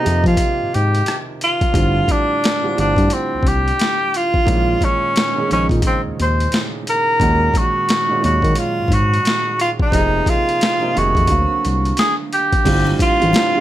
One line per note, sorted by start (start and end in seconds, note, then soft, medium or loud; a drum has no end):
0.00 1.76 C3 medium
0.00 1.76 D#3 medium
0.00 1.76 F3 medium
0.00 0.02 A#3 medium
0.00 1.19 A#3 medium
0.00 0.03 D#4 medium
0.00 0.26 D#4 medium
0.00 1.20 D#4 medium
0.00 0.04 G4 medium
0.04 0.23 F2 medium
0.04 1.20 G4 medium
0.04 closed hi-hat medium
0.24 0.36 F3 loud
0.24 0.76 F4 medium
0.24 kick medium
0.24 closed hi-hat soft
0.37 kick medium
0.37 closed hi-hat medium
0.62 0.67 G#2 soft
0.74 1.02 G#2 medium
0.74 1.16 G4 medium
0.74 closed hi-hat medium
0.95 closed hi-hat soft
1.06 cross-stick medium
1.06 closed hi-hat medium
1.41 2.13 F4 medium
1.41 closed hi-hat medium
1.61 kick medium
1.61 closed hi-hat soft
1.72 2.03 G1 loud
1.72 2.45 A2 medium
1.72 2.45 D3 medium
1.72 2.46 G3 medium
1.72 2.46 C4 medium
1.72 2.46 F4 medium
1.72 kick loud
1.72 closed hi-hat medium
2.08 2.78 D4 medium
2.08 kick medium
2.08 closed hi-hat medium
2.44 snare medium
2.44 closed hi-hat medium
2.62 2.73 A2 medium
2.62 2.74 D3 medium
2.62 2.74 G3 medium
2.62 2.75 C4 medium
2.62 2.75 F4 medium
2.74 3.91 A2 medium
2.74 3.92 D3 medium
2.74 3.93 G3 medium
2.74 3.93 C4 medium
2.74 3.93 F4 medium
2.78 2.95 G1 medium
2.78 3.15 D4 medium
2.78 closed hi-hat medium
2.97 3.08 G2 loud
2.97 kick medium
2.97 closed hi-hat soft
3.10 3.49 C4 medium
3.10 closed hi-hat medium
3.35 3.39 C2 soft
3.43 3.72 C2 medium
3.43 kick medium
3.43 closed hi-hat medium
3.48 4.18 G4 medium
3.68 closed hi-hat soft
3.79 snare medium
3.79 closed hi-hat medium
4.14 4.86 F4 loud
4.14 closed hi-hat medium
4.34 kick medium
4.45 4.76 A#1 loud
4.45 5.18 A#2 medium
4.45 5.18 D#3 medium
4.45 5.18 G#3 medium
4.45 5.19 C#4 medium
4.45 4.56 E4 medium
4.45 kick medium
4.45 closed hi-hat medium
4.55 5.22 F4 medium
4.81 5.51 C#4 medium
4.81 kick medium
4.81 closed hi-hat medium
5.16 snare loud
5.16 closed hi-hat medium
5.35 5.46 A#2 medium
5.35 5.47 D#3 medium
5.35 5.47 G#3 medium
5.35 5.48 C#4 medium
5.35 5.48 G#4 medium
5.49 5.69 A#1 medium
5.49 6.65 A#2 medium
5.49 6.65 D#3 medium
5.49 6.66 G#3 medium
5.49 5.58 C4 soft
5.49 6.67 D#4 medium
5.49 closed hi-hat medium
5.53 5.67 C#4 medium
5.58 6.70 C#3 medium
5.69 5.81 A#2 medium
5.69 kick medium
5.69 closed hi-hat soft
5.82 kick medium
5.82 closed hi-hat medium
5.87 6.01 C4 medium
6.07 6.12 D#2 soft
6.20 6.47 D#2 medium
6.20 6.60 C5 medium
6.20 closed hi-hat medium
6.40 closed hi-hat soft
6.52 snare loud
6.52 closed hi-hat medium
6.87 7.59 A#4 loud
6.87 closed hi-hat medium
7.19 7.49 D#2 loud
7.19 7.91 A#2 medium
7.19 7.91 D#3 medium
7.19 7.92 G#3 medium
7.19 7.92 C#4 medium
7.19 7.93 F#4 medium
7.19 kick medium
7.19 closed hi-hat medium
7.54 8.24 F#4 loud
7.54 kick medium
7.54 closed hi-hat medium
7.89 snare medium
7.89 closed hi-hat medium
8.08 8.19 A#2 medium
8.08 8.20 D#3 medium
8.08 8.20 G#3 medium
8.08 8.21 C#4 medium
8.08 8.21 F#4 medium
8.20 9.37 A#2 medium
8.20 9.38 D#3 medium
8.20 9.39 F#3 medium
8.20 9.38 G#3 medium
8.20 9.39 C#4 medium
8.20 closed hi-hat medium
8.25 8.41 D#2 medium
8.25 8.60 F#4 medium
8.42 8.54 D#3 loud
8.42 kick medium
8.42 closed hi-hat soft
8.55 8.95 F4 medium
8.55 closed hi-hat medium
8.80 8.84 G#2 soft
8.88 9.18 G#2 medium
8.88 kick medium
8.88 closed hi-hat medium
8.93 9.60 F#4 loud
9.14 closed hi-hat soft
9.25 snare medium
9.25 closed hi-hat medium
9.60 9.70 F4 medium
9.60 closed hi-hat medium
9.80 10.31 D#4 medium
9.80 kick medium
9.91 10.21 F1 loud
9.91 10.63 C3 medium
9.91 10.63 F3 medium
9.91 10.64 A#3 medium
9.91 10.64 D#4 medium
9.91 10.65 G#4 medium
9.91 kick loud
9.91 closed hi-hat medium
10.26 10.99 F4 loud
10.26 kick medium
10.26 closed hi-hat medium
10.49 closed hi-hat soft
10.61 snare medium
10.61 closed hi-hat medium
10.80 10.91 C3 medium
10.80 10.91 F3 medium
10.80 10.92 A#3 medium
10.80 10.92 D#4 medium
10.80 10.93 F4 medium
10.93 11.14 F1 medium
10.93 11.28 C3 medium
10.93 11.28 D#3 medium
10.93 11.28 A#3 medium
10.93 11.29 D#4 medium
10.93 11.29 G#4 medium
10.93 closed hi-hat medium
10.98 11.98 F#4 medium
11.15 11.27 F2 medium
11.15 kick medium
11.15 closed hi-hat soft
11.27 11.47 D2 loud
11.27 12.44 D3 medium
11.27 11.37 F3 soft
11.27 12.45 A#3 medium
11.27 12.45 C4 medium
11.27 12.46 F5 medium
11.27 kick medium
11.27 closed hi-hat medium
11.35 12.48 F#3 medium
11.52 11.57 C2 soft
11.65 11.93 C2 medium
11.65 closed hi-hat medium
11.85 closed hi-hat soft
11.97 12.14 G#4 medium
11.97 snare medium
11.97 closed hi-hat medium
12.33 12.96 G4 medium
12.33 closed hi-hat medium
12.53 kick medium
12.53 closed hi-hat soft
12.64 12.94 G1 loud
12.64 13.09 A2 medium
12.64 13.10 D3 medium
12.64 13.10 G3 medium
12.64 13.11 C4 medium
12.64 13.11 F4 medium
12.64 kick loud
12.64 closed hi-hat medium
12.64 crash medium
12.64 low conga medium
12.87 muted conga soft
12.99 13.60 F4 loud
12.99 kick medium
12.99 closed hi-hat medium
13.20 13.32 A1 medium
13.20 13.47 A2 medium
13.20 13.47 D3 medium
13.20 13.48 G3 medium
13.20 13.48 C4 medium
13.20 13.49 F4 medium
13.20 closed hi-hat soft
13.33 snare loud
13.33 closed hi-hat medium
13.33 high conga medium
13.54 13.60 A2 medium
13.54 13.60 D3 medium
13.54 13.60 G3 medium
13.54 13.60 C4 medium